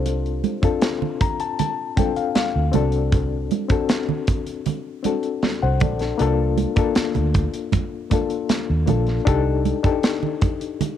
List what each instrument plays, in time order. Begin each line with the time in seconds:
Already playing: fingered electric bass C2, reed electric piano C4 D4 F4 G4 A4
0.06 closed hi-hat, muted conga
0.26 closed hi-hat
0.44 closed hi-hat, muted conga, high conga
0.62 reed electric piano C4 D4 F4 A4, muted fingered electric bass stroke, kick, closed hi-hat
0.82 snare, closed hi-hat, muted conga
1.02 low conga
1.21 reed electric piano A#5, kick, closed hi-hat, muted conga
1.40 reed electric piano A5, closed hi-hat
1.59 reed electric piano A5, closed hi-hat, high conga, low conga
1.96 reed electric piano C4 D4 F4 A4 G5, kick, closed hi-hat, muted conga, high conga
2.17 reed electric piano F5, closed hi-hat
2.35 reed electric piano F5, snare, closed hi-hat, high conga
2.56 fingered electric bass D2
2.72 fingered electric bass C2, reed electric piano C4 D4 F#4 A4 D5, closed hi-hat, high conga, low conga
2.92 closed hi-hat
3.12 kick, closed hi-hat, muted conga
3.51 closed hi-hat, high conga
3.68 reed electric piano C4 D4 F#4 A4, muted fingered electric bass stroke, kick, closed hi-hat
3.89 snare, closed hi-hat, muted conga
4.08 low conga
4.27 kick, closed hi-hat, muted conga
4.46 closed hi-hat
4.66 closed hi-hat, high conga, low conga
5.02 reed electric piano C4 D4 F#4 A4, closed hi-hat, high conga
5.23 closed hi-hat
5.42 snare, closed hi-hat, high conga
5.62 fingered electric bass C2, reed electric piano C5 F#5
5.80 fingered electric bass A#1, reed electric piano A4 D5, kick, closed hi-hat, high conga, low conga
5.99 reed electric piano D4 A4, snare, closed hi-hat
6.18 fingered electric bass C2, reed electric piano A#3 D4 F4 A4, closed hi-hat
6.58 closed hi-hat, high conga
6.76 reed electric piano A#3 D4 F4 A4, muted fingered electric bass stroke, kick, closed hi-hat
6.95 muted fingered electric bass stroke, snare, closed hi-hat
7.15 fingered electric bass D2, closed hi-hat, low conga
7.34 kick, closed hi-hat, muted conga
7.54 closed hi-hat
7.72 kick, closed hi-hat, muted conga, high conga, low conga
8.10 reed electric piano A#3 D4 F4 A4, kick, closed hi-hat, muted conga, high conga
8.30 closed hi-hat
8.49 snare, closed hi-hat, muted conga, high conga
8.70 fingered electric bass D#2
8.86 fingered electric bass A#1, reed electric piano A#3 D4 F4 A4, closed hi-hat, high conga, low conga
9.07 snare, closed hi-hat
9.25 fingered electric bass C2, reed electric piano D4 D#4 G4 A4, kick, closed hi-hat
9.65 closed hi-hat, high conga
9.83 reed electric piano D4 D#4 G4 A4, muted fingered electric bass stroke, kick, closed hi-hat
10.03 snare, closed hi-hat, muted conga
10.23 low conga
10.41 kick, closed hi-hat, muted conga
10.61 closed hi-hat
10.81 closed hi-hat, high conga, low conga